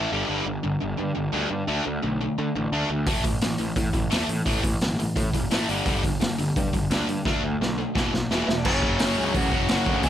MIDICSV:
0, 0, Header, 1, 6, 480
1, 0, Start_track
1, 0, Tempo, 348837
1, 383, Time_signature, 4, 2, 24, 8
1, 13888, End_track
2, 0, Start_track
2, 0, Title_t, "Lead electric guitar"
2, 0, Program_c, 0, 29
2, 11670, Note_on_c, 0, 76, 78
2, 11681, Note_on_c, 0, 64, 64
2, 11781, Note_off_c, 0, 76, 0
2, 11781, Note_on_c, 0, 74, 72
2, 11785, Note_off_c, 0, 64, 0
2, 11793, Note_on_c, 0, 62, 59
2, 11894, Note_on_c, 0, 73, 86
2, 11896, Note_off_c, 0, 62, 0
2, 11902, Note_on_c, 0, 61, 69
2, 11907, Note_off_c, 0, 74, 0
2, 12807, Note_off_c, 0, 61, 0
2, 12868, Note_on_c, 0, 78, 96
2, 12879, Note_on_c, 0, 66, 76
2, 12887, Note_off_c, 0, 73, 0
2, 13318, Note_off_c, 0, 66, 0
2, 13320, Note_off_c, 0, 78, 0
2, 13333, Note_on_c, 0, 66, 74
2, 13341, Note_on_c, 0, 78, 87
2, 13785, Note_off_c, 0, 66, 0
2, 13815, Note_on_c, 0, 80, 108
2, 13823, Note_on_c, 0, 68, 82
2, 13833, Note_off_c, 0, 78, 0
2, 13888, Note_off_c, 0, 68, 0
2, 13888, Note_off_c, 0, 80, 0
2, 13888, End_track
3, 0, Start_track
3, 0, Title_t, "Distorted electric guitar"
3, 0, Program_c, 1, 30
3, 154, Note_on_c, 1, 43, 92
3, 163, Note_on_c, 1, 50, 93
3, 170, Note_on_c, 1, 55, 96
3, 369, Note_off_c, 1, 43, 0
3, 378, Note_off_c, 1, 50, 0
3, 379, Note_off_c, 1, 55, 0
3, 386, Note_on_c, 1, 43, 86
3, 395, Note_on_c, 1, 55, 101
3, 396, Note_on_c, 1, 50, 93
3, 609, Note_off_c, 1, 43, 0
3, 614, Note_off_c, 1, 50, 0
3, 614, Note_off_c, 1, 55, 0
3, 639, Note_on_c, 1, 43, 71
3, 647, Note_on_c, 1, 50, 68
3, 846, Note_off_c, 1, 43, 0
3, 850, Note_off_c, 1, 50, 0
3, 869, Note_on_c, 1, 43, 78
3, 875, Note_on_c, 1, 50, 92
3, 1081, Note_off_c, 1, 43, 0
3, 1084, Note_off_c, 1, 50, 0
3, 1113, Note_on_c, 1, 43, 71
3, 1124, Note_on_c, 1, 50, 75
3, 1323, Note_off_c, 1, 43, 0
3, 1328, Note_off_c, 1, 50, 0
3, 1347, Note_on_c, 1, 43, 77
3, 1356, Note_on_c, 1, 50, 83
3, 1560, Note_off_c, 1, 43, 0
3, 1564, Note_off_c, 1, 50, 0
3, 1585, Note_on_c, 1, 43, 71
3, 1590, Note_on_c, 1, 50, 72
3, 1799, Note_off_c, 1, 43, 0
3, 1801, Note_off_c, 1, 50, 0
3, 1825, Note_on_c, 1, 43, 90
3, 1826, Note_on_c, 1, 50, 81
3, 1831, Note_on_c, 1, 55, 92
3, 2048, Note_off_c, 1, 43, 0
3, 2049, Note_off_c, 1, 50, 0
3, 2051, Note_off_c, 1, 55, 0
3, 2062, Note_on_c, 1, 43, 70
3, 2071, Note_on_c, 1, 50, 76
3, 2277, Note_off_c, 1, 43, 0
3, 2282, Note_off_c, 1, 50, 0
3, 2308, Note_on_c, 1, 50, 90
3, 2316, Note_on_c, 1, 57, 91
3, 2321, Note_on_c, 1, 62, 96
3, 2529, Note_off_c, 1, 50, 0
3, 2533, Note_off_c, 1, 57, 0
3, 2536, Note_off_c, 1, 62, 0
3, 2554, Note_on_c, 1, 50, 66
3, 2555, Note_on_c, 1, 57, 70
3, 2763, Note_off_c, 1, 50, 0
3, 2763, Note_off_c, 1, 57, 0
3, 2786, Note_on_c, 1, 50, 81
3, 2794, Note_on_c, 1, 57, 95
3, 2999, Note_off_c, 1, 50, 0
3, 3003, Note_off_c, 1, 57, 0
3, 3036, Note_on_c, 1, 50, 76
3, 3042, Note_on_c, 1, 57, 73
3, 3244, Note_off_c, 1, 50, 0
3, 3247, Note_off_c, 1, 57, 0
3, 3274, Note_on_c, 1, 50, 72
3, 3281, Note_on_c, 1, 57, 82
3, 3483, Note_off_c, 1, 50, 0
3, 3486, Note_off_c, 1, 57, 0
3, 3515, Note_on_c, 1, 50, 66
3, 3526, Note_on_c, 1, 57, 69
3, 3723, Note_off_c, 1, 50, 0
3, 3729, Note_off_c, 1, 57, 0
3, 3749, Note_on_c, 1, 50, 85
3, 3757, Note_on_c, 1, 57, 87
3, 3764, Note_on_c, 1, 62, 89
3, 3967, Note_off_c, 1, 50, 0
3, 3974, Note_off_c, 1, 57, 0
3, 3977, Note_off_c, 1, 62, 0
3, 3983, Note_on_c, 1, 50, 65
3, 3993, Note_on_c, 1, 57, 76
3, 4197, Note_off_c, 1, 50, 0
3, 4202, Note_off_c, 1, 57, 0
3, 4221, Note_on_c, 1, 45, 85
3, 4231, Note_on_c, 1, 52, 97
3, 4237, Note_on_c, 1, 57, 96
3, 4441, Note_off_c, 1, 45, 0
3, 4451, Note_off_c, 1, 52, 0
3, 4454, Note_off_c, 1, 57, 0
3, 4457, Note_on_c, 1, 45, 66
3, 4469, Note_on_c, 1, 52, 65
3, 4675, Note_off_c, 1, 45, 0
3, 4680, Note_off_c, 1, 52, 0
3, 4700, Note_on_c, 1, 45, 81
3, 4709, Note_on_c, 1, 52, 92
3, 4913, Note_off_c, 1, 45, 0
3, 4921, Note_off_c, 1, 52, 0
3, 4930, Note_on_c, 1, 45, 70
3, 4938, Note_on_c, 1, 52, 72
3, 5151, Note_off_c, 1, 45, 0
3, 5155, Note_off_c, 1, 52, 0
3, 5173, Note_on_c, 1, 45, 73
3, 5178, Note_on_c, 1, 52, 88
3, 5393, Note_off_c, 1, 45, 0
3, 5395, Note_off_c, 1, 52, 0
3, 5408, Note_on_c, 1, 45, 61
3, 5416, Note_on_c, 1, 52, 70
3, 5625, Note_off_c, 1, 45, 0
3, 5634, Note_off_c, 1, 52, 0
3, 5641, Note_on_c, 1, 45, 78
3, 5652, Note_on_c, 1, 52, 82
3, 5658, Note_on_c, 1, 57, 97
3, 5873, Note_off_c, 1, 45, 0
3, 5878, Note_off_c, 1, 52, 0
3, 5885, Note_off_c, 1, 57, 0
3, 5890, Note_on_c, 1, 45, 72
3, 5895, Note_on_c, 1, 52, 80
3, 6111, Note_off_c, 1, 45, 0
3, 6114, Note_off_c, 1, 52, 0
3, 6132, Note_on_c, 1, 45, 97
3, 6140, Note_on_c, 1, 52, 90
3, 6142, Note_on_c, 1, 57, 102
3, 6362, Note_off_c, 1, 45, 0
3, 6366, Note_off_c, 1, 52, 0
3, 6367, Note_off_c, 1, 57, 0
3, 6377, Note_on_c, 1, 45, 74
3, 6386, Note_on_c, 1, 52, 75
3, 6595, Note_off_c, 1, 45, 0
3, 6600, Note_off_c, 1, 52, 0
3, 6627, Note_on_c, 1, 45, 81
3, 6631, Note_on_c, 1, 52, 87
3, 6841, Note_off_c, 1, 45, 0
3, 6843, Note_off_c, 1, 52, 0
3, 6866, Note_on_c, 1, 45, 69
3, 6868, Note_on_c, 1, 52, 76
3, 7080, Note_off_c, 1, 45, 0
3, 7081, Note_off_c, 1, 52, 0
3, 7096, Note_on_c, 1, 45, 78
3, 7105, Note_on_c, 1, 52, 94
3, 7315, Note_off_c, 1, 45, 0
3, 7320, Note_off_c, 1, 52, 0
3, 7342, Note_on_c, 1, 45, 65
3, 7346, Note_on_c, 1, 52, 70
3, 7558, Note_off_c, 1, 45, 0
3, 7560, Note_off_c, 1, 52, 0
3, 7578, Note_on_c, 1, 45, 83
3, 7586, Note_on_c, 1, 52, 85
3, 7594, Note_on_c, 1, 57, 106
3, 7806, Note_off_c, 1, 45, 0
3, 7810, Note_off_c, 1, 52, 0
3, 7814, Note_off_c, 1, 57, 0
3, 7824, Note_on_c, 1, 43, 83
3, 7834, Note_on_c, 1, 50, 96
3, 7841, Note_on_c, 1, 55, 85
3, 8049, Note_off_c, 1, 43, 0
3, 8054, Note_off_c, 1, 50, 0
3, 8058, Note_off_c, 1, 55, 0
3, 8066, Note_on_c, 1, 43, 81
3, 8078, Note_on_c, 1, 50, 105
3, 8079, Note_on_c, 1, 55, 106
3, 8284, Note_off_c, 1, 43, 0
3, 8291, Note_off_c, 1, 50, 0
3, 8297, Note_off_c, 1, 55, 0
3, 8301, Note_on_c, 1, 43, 62
3, 8308, Note_on_c, 1, 50, 77
3, 8518, Note_off_c, 1, 43, 0
3, 8522, Note_off_c, 1, 50, 0
3, 8537, Note_on_c, 1, 43, 80
3, 8544, Note_on_c, 1, 50, 86
3, 8757, Note_off_c, 1, 43, 0
3, 8760, Note_off_c, 1, 50, 0
3, 8784, Note_on_c, 1, 43, 73
3, 8786, Note_on_c, 1, 50, 79
3, 9000, Note_off_c, 1, 43, 0
3, 9001, Note_off_c, 1, 50, 0
3, 9028, Note_on_c, 1, 43, 80
3, 9032, Note_on_c, 1, 50, 87
3, 9242, Note_off_c, 1, 43, 0
3, 9244, Note_off_c, 1, 50, 0
3, 9260, Note_on_c, 1, 43, 64
3, 9262, Note_on_c, 1, 50, 73
3, 9478, Note_off_c, 1, 43, 0
3, 9480, Note_off_c, 1, 50, 0
3, 9504, Note_on_c, 1, 43, 80
3, 9512, Note_on_c, 1, 50, 100
3, 9518, Note_on_c, 1, 55, 93
3, 9730, Note_off_c, 1, 43, 0
3, 9734, Note_off_c, 1, 50, 0
3, 9737, Note_off_c, 1, 55, 0
3, 9749, Note_on_c, 1, 43, 77
3, 9754, Note_on_c, 1, 50, 76
3, 9963, Note_off_c, 1, 43, 0
3, 9965, Note_off_c, 1, 50, 0
3, 9983, Note_on_c, 1, 50, 94
3, 9988, Note_on_c, 1, 57, 101
3, 9992, Note_on_c, 1, 62, 98
3, 10210, Note_off_c, 1, 50, 0
3, 10212, Note_off_c, 1, 57, 0
3, 10214, Note_off_c, 1, 62, 0
3, 10230, Note_on_c, 1, 50, 62
3, 10243, Note_on_c, 1, 57, 65
3, 10444, Note_off_c, 1, 50, 0
3, 10450, Note_off_c, 1, 57, 0
3, 10475, Note_on_c, 1, 50, 82
3, 10476, Note_on_c, 1, 57, 86
3, 10686, Note_off_c, 1, 50, 0
3, 10687, Note_off_c, 1, 57, 0
3, 10703, Note_on_c, 1, 50, 62
3, 10709, Note_on_c, 1, 57, 75
3, 10920, Note_off_c, 1, 50, 0
3, 10923, Note_off_c, 1, 57, 0
3, 10937, Note_on_c, 1, 40, 89
3, 10941, Note_on_c, 1, 47, 100
3, 10953, Note_on_c, 1, 52, 105
3, 11167, Note_off_c, 1, 40, 0
3, 11169, Note_off_c, 1, 47, 0
3, 11175, Note_off_c, 1, 52, 0
3, 11188, Note_on_c, 1, 40, 70
3, 11197, Note_on_c, 1, 47, 73
3, 11403, Note_off_c, 1, 40, 0
3, 11407, Note_off_c, 1, 47, 0
3, 11430, Note_on_c, 1, 40, 84
3, 11438, Note_on_c, 1, 47, 93
3, 11442, Note_on_c, 1, 52, 107
3, 11653, Note_off_c, 1, 40, 0
3, 11657, Note_off_c, 1, 47, 0
3, 11659, Note_off_c, 1, 52, 0
3, 11669, Note_on_c, 1, 40, 66
3, 11677, Note_on_c, 1, 47, 79
3, 11883, Note_off_c, 1, 40, 0
3, 11887, Note_off_c, 1, 47, 0
3, 11895, Note_on_c, 1, 42, 97
3, 11917, Note_on_c, 1, 49, 105
3, 11937, Note_on_c, 1, 54, 112
3, 13074, Note_off_c, 1, 54, 0
3, 13084, Note_off_c, 1, 42, 0
3, 13091, Note_on_c, 1, 54, 76
3, 13095, Note_off_c, 1, 49, 0
3, 13110, Note_on_c, 1, 49, 75
3, 13126, Note_on_c, 1, 42, 74
3, 13309, Note_off_c, 1, 42, 0
3, 13322, Note_off_c, 1, 54, 0
3, 13325, Note_on_c, 1, 42, 81
3, 13329, Note_off_c, 1, 49, 0
3, 13345, Note_on_c, 1, 49, 81
3, 13366, Note_on_c, 1, 54, 73
3, 13799, Note_off_c, 1, 42, 0
3, 13807, Note_on_c, 1, 40, 103
3, 13809, Note_off_c, 1, 49, 0
3, 13819, Note_off_c, 1, 54, 0
3, 13829, Note_on_c, 1, 47, 102
3, 13842, Note_on_c, 1, 52, 106
3, 13888, Note_off_c, 1, 40, 0
3, 13888, Note_off_c, 1, 47, 0
3, 13888, Note_off_c, 1, 52, 0
3, 13888, End_track
4, 0, Start_track
4, 0, Title_t, "Distorted electric guitar"
4, 0, Program_c, 2, 30
4, 13578, Note_on_c, 2, 54, 84
4, 13592, Note_on_c, 2, 49, 86
4, 13604, Note_on_c, 2, 42, 68
4, 13803, Note_off_c, 2, 42, 0
4, 13806, Note_off_c, 2, 54, 0
4, 13812, Note_off_c, 2, 49, 0
4, 13888, End_track
5, 0, Start_track
5, 0, Title_t, "Picked electric bass"
5, 0, Program_c, 3, 34
5, 164, Note_on_c, 3, 31, 80
5, 312, Note_off_c, 3, 31, 0
5, 410, Note_on_c, 3, 31, 97
5, 557, Note_off_c, 3, 31, 0
5, 638, Note_on_c, 3, 31, 88
5, 788, Note_off_c, 3, 31, 0
5, 889, Note_on_c, 3, 31, 94
5, 1036, Note_off_c, 3, 31, 0
5, 1136, Note_on_c, 3, 31, 88
5, 1280, Note_off_c, 3, 31, 0
5, 1370, Note_on_c, 3, 43, 97
5, 1516, Note_off_c, 3, 43, 0
5, 1608, Note_on_c, 3, 31, 89
5, 1755, Note_off_c, 3, 31, 0
5, 1837, Note_on_c, 3, 38, 100
5, 1987, Note_off_c, 3, 38, 0
5, 2076, Note_on_c, 3, 43, 87
5, 2227, Note_off_c, 3, 43, 0
5, 2318, Note_on_c, 3, 38, 100
5, 2468, Note_off_c, 3, 38, 0
5, 2572, Note_on_c, 3, 38, 79
5, 2717, Note_off_c, 3, 38, 0
5, 2811, Note_on_c, 3, 35, 91
5, 3112, Note_off_c, 3, 35, 0
5, 3283, Note_on_c, 3, 50, 94
5, 3431, Note_off_c, 3, 50, 0
5, 3520, Note_on_c, 3, 33, 89
5, 3669, Note_off_c, 3, 33, 0
5, 3746, Note_on_c, 3, 38, 96
5, 3900, Note_off_c, 3, 38, 0
5, 3988, Note_on_c, 3, 38, 81
5, 4223, Note_on_c, 3, 33, 94
5, 4243, Note_off_c, 3, 38, 0
5, 4377, Note_off_c, 3, 33, 0
5, 4460, Note_on_c, 3, 33, 84
5, 4616, Note_off_c, 3, 33, 0
5, 4709, Note_on_c, 3, 33, 86
5, 4862, Note_off_c, 3, 33, 0
5, 4952, Note_on_c, 3, 33, 75
5, 5104, Note_off_c, 3, 33, 0
5, 5184, Note_on_c, 3, 45, 99
5, 5338, Note_off_c, 3, 45, 0
5, 5417, Note_on_c, 3, 33, 93
5, 5574, Note_off_c, 3, 33, 0
5, 5663, Note_on_c, 3, 40, 89
5, 5818, Note_off_c, 3, 40, 0
5, 5903, Note_on_c, 3, 45, 91
5, 6058, Note_off_c, 3, 45, 0
5, 6138, Note_on_c, 3, 33, 88
5, 6295, Note_off_c, 3, 33, 0
5, 6381, Note_on_c, 3, 33, 80
5, 6537, Note_off_c, 3, 33, 0
5, 6625, Note_on_c, 3, 31, 91
5, 6935, Note_off_c, 3, 31, 0
5, 7105, Note_on_c, 3, 45, 100
5, 7260, Note_off_c, 3, 45, 0
5, 7348, Note_on_c, 3, 28, 89
5, 7502, Note_off_c, 3, 28, 0
5, 7592, Note_on_c, 3, 33, 98
5, 7745, Note_off_c, 3, 33, 0
5, 7835, Note_on_c, 3, 31, 87
5, 7987, Note_off_c, 3, 31, 0
5, 8063, Note_on_c, 3, 31, 99
5, 8219, Note_off_c, 3, 31, 0
5, 8311, Note_on_c, 3, 31, 78
5, 8464, Note_off_c, 3, 31, 0
5, 8560, Note_on_c, 3, 31, 87
5, 8711, Note_off_c, 3, 31, 0
5, 8792, Note_on_c, 3, 31, 81
5, 8945, Note_off_c, 3, 31, 0
5, 9039, Note_on_c, 3, 43, 86
5, 9190, Note_off_c, 3, 43, 0
5, 9270, Note_on_c, 3, 31, 89
5, 9424, Note_off_c, 3, 31, 0
5, 9502, Note_on_c, 3, 38, 100
5, 9659, Note_off_c, 3, 38, 0
5, 9748, Note_on_c, 3, 43, 90
5, 9903, Note_off_c, 3, 43, 0
5, 9986, Note_on_c, 3, 38, 103
5, 10141, Note_off_c, 3, 38, 0
5, 10235, Note_on_c, 3, 38, 83
5, 10388, Note_off_c, 3, 38, 0
5, 10473, Note_on_c, 3, 35, 87
5, 10782, Note_off_c, 3, 35, 0
5, 10945, Note_on_c, 3, 28, 97
5, 11101, Note_off_c, 3, 28, 0
5, 11190, Note_on_c, 3, 35, 92
5, 11344, Note_off_c, 3, 35, 0
5, 11432, Note_on_c, 3, 28, 91
5, 11585, Note_off_c, 3, 28, 0
5, 11674, Note_on_c, 3, 28, 87
5, 11907, Note_off_c, 3, 28, 0
5, 11907, Note_on_c, 3, 30, 89
5, 12121, Note_off_c, 3, 30, 0
5, 12150, Note_on_c, 3, 30, 85
5, 12361, Note_off_c, 3, 30, 0
5, 12386, Note_on_c, 3, 30, 92
5, 12599, Note_off_c, 3, 30, 0
5, 12621, Note_on_c, 3, 37, 90
5, 12837, Note_off_c, 3, 37, 0
5, 12856, Note_on_c, 3, 33, 104
5, 13074, Note_off_c, 3, 33, 0
5, 13100, Note_on_c, 3, 30, 104
5, 13316, Note_off_c, 3, 30, 0
5, 13344, Note_on_c, 3, 30, 98
5, 13558, Note_off_c, 3, 30, 0
5, 13578, Note_on_c, 3, 38, 84
5, 13794, Note_off_c, 3, 38, 0
5, 13816, Note_on_c, 3, 28, 99
5, 13888, Note_off_c, 3, 28, 0
5, 13888, End_track
6, 0, Start_track
6, 0, Title_t, "Drums"
6, 4215, Note_on_c, 9, 46, 76
6, 4219, Note_on_c, 9, 36, 103
6, 4353, Note_off_c, 9, 46, 0
6, 4357, Note_off_c, 9, 36, 0
6, 4457, Note_on_c, 9, 36, 85
6, 4460, Note_on_c, 9, 46, 63
6, 4595, Note_off_c, 9, 36, 0
6, 4597, Note_off_c, 9, 46, 0
6, 4696, Note_on_c, 9, 46, 79
6, 4710, Note_on_c, 9, 38, 116
6, 4833, Note_off_c, 9, 46, 0
6, 4847, Note_off_c, 9, 38, 0
6, 4928, Note_on_c, 9, 46, 58
6, 5065, Note_off_c, 9, 46, 0
6, 5175, Note_on_c, 9, 36, 103
6, 5177, Note_on_c, 9, 46, 70
6, 5313, Note_off_c, 9, 36, 0
6, 5315, Note_off_c, 9, 46, 0
6, 5415, Note_on_c, 9, 36, 95
6, 5418, Note_on_c, 9, 46, 55
6, 5552, Note_off_c, 9, 36, 0
6, 5556, Note_off_c, 9, 46, 0
6, 5662, Note_on_c, 9, 46, 77
6, 5676, Note_on_c, 9, 38, 112
6, 5800, Note_off_c, 9, 46, 0
6, 5813, Note_off_c, 9, 38, 0
6, 5902, Note_on_c, 9, 46, 61
6, 6040, Note_off_c, 9, 46, 0
6, 6136, Note_on_c, 9, 36, 100
6, 6140, Note_on_c, 9, 46, 72
6, 6274, Note_off_c, 9, 36, 0
6, 6277, Note_off_c, 9, 46, 0
6, 6378, Note_on_c, 9, 36, 87
6, 6382, Note_on_c, 9, 46, 63
6, 6516, Note_off_c, 9, 36, 0
6, 6520, Note_off_c, 9, 46, 0
6, 6621, Note_on_c, 9, 46, 73
6, 6635, Note_on_c, 9, 38, 113
6, 6758, Note_off_c, 9, 46, 0
6, 6772, Note_off_c, 9, 38, 0
6, 6872, Note_on_c, 9, 46, 59
6, 7010, Note_off_c, 9, 46, 0
6, 7102, Note_on_c, 9, 36, 102
6, 7108, Note_on_c, 9, 46, 73
6, 7240, Note_off_c, 9, 36, 0
6, 7245, Note_off_c, 9, 46, 0
6, 7341, Note_on_c, 9, 36, 84
6, 7350, Note_on_c, 9, 46, 65
6, 7478, Note_off_c, 9, 36, 0
6, 7488, Note_off_c, 9, 46, 0
6, 7581, Note_on_c, 9, 46, 80
6, 7594, Note_on_c, 9, 38, 103
6, 7718, Note_off_c, 9, 46, 0
6, 7732, Note_off_c, 9, 38, 0
6, 7828, Note_on_c, 9, 46, 60
6, 7965, Note_off_c, 9, 46, 0
6, 8059, Note_on_c, 9, 46, 70
6, 8062, Note_on_c, 9, 36, 115
6, 8196, Note_off_c, 9, 46, 0
6, 8200, Note_off_c, 9, 36, 0
6, 8303, Note_on_c, 9, 36, 91
6, 8311, Note_on_c, 9, 46, 62
6, 8441, Note_off_c, 9, 36, 0
6, 8448, Note_off_c, 9, 46, 0
6, 8548, Note_on_c, 9, 46, 81
6, 8561, Note_on_c, 9, 38, 117
6, 8685, Note_off_c, 9, 46, 0
6, 8699, Note_off_c, 9, 38, 0
6, 8795, Note_on_c, 9, 46, 55
6, 8932, Note_off_c, 9, 46, 0
6, 9030, Note_on_c, 9, 36, 112
6, 9035, Note_on_c, 9, 46, 65
6, 9167, Note_off_c, 9, 36, 0
6, 9172, Note_off_c, 9, 46, 0
6, 9266, Note_on_c, 9, 36, 96
6, 9272, Note_on_c, 9, 46, 60
6, 9403, Note_off_c, 9, 36, 0
6, 9410, Note_off_c, 9, 46, 0
6, 9504, Note_on_c, 9, 46, 82
6, 9518, Note_on_c, 9, 38, 110
6, 9642, Note_off_c, 9, 46, 0
6, 9656, Note_off_c, 9, 38, 0
6, 9750, Note_on_c, 9, 46, 58
6, 9887, Note_off_c, 9, 46, 0
6, 9981, Note_on_c, 9, 36, 110
6, 9990, Note_on_c, 9, 38, 58
6, 10119, Note_off_c, 9, 36, 0
6, 10128, Note_off_c, 9, 38, 0
6, 10483, Note_on_c, 9, 38, 70
6, 10621, Note_off_c, 9, 38, 0
6, 10945, Note_on_c, 9, 36, 107
6, 10961, Note_on_c, 9, 38, 83
6, 11083, Note_off_c, 9, 36, 0
6, 11098, Note_off_c, 9, 38, 0
6, 11197, Note_on_c, 9, 38, 79
6, 11335, Note_off_c, 9, 38, 0
6, 11431, Note_on_c, 9, 38, 94
6, 11569, Note_off_c, 9, 38, 0
6, 11681, Note_on_c, 9, 38, 87
6, 11819, Note_off_c, 9, 38, 0
6, 11900, Note_on_c, 9, 49, 115
6, 11903, Note_on_c, 9, 36, 108
6, 12038, Note_off_c, 9, 49, 0
6, 12041, Note_off_c, 9, 36, 0
6, 12142, Note_on_c, 9, 36, 94
6, 12279, Note_off_c, 9, 36, 0
6, 12373, Note_on_c, 9, 46, 68
6, 12387, Note_on_c, 9, 38, 124
6, 12511, Note_off_c, 9, 46, 0
6, 12524, Note_off_c, 9, 38, 0
6, 12858, Note_on_c, 9, 46, 56
6, 12860, Note_on_c, 9, 36, 115
6, 12996, Note_off_c, 9, 46, 0
6, 12998, Note_off_c, 9, 36, 0
6, 13097, Note_on_c, 9, 36, 100
6, 13234, Note_off_c, 9, 36, 0
6, 13324, Note_on_c, 9, 46, 58
6, 13338, Note_on_c, 9, 38, 122
6, 13462, Note_off_c, 9, 46, 0
6, 13475, Note_off_c, 9, 38, 0
6, 13573, Note_on_c, 9, 36, 91
6, 13711, Note_off_c, 9, 36, 0
6, 13802, Note_on_c, 9, 46, 63
6, 13813, Note_on_c, 9, 36, 114
6, 13888, Note_off_c, 9, 36, 0
6, 13888, Note_off_c, 9, 46, 0
6, 13888, End_track
0, 0, End_of_file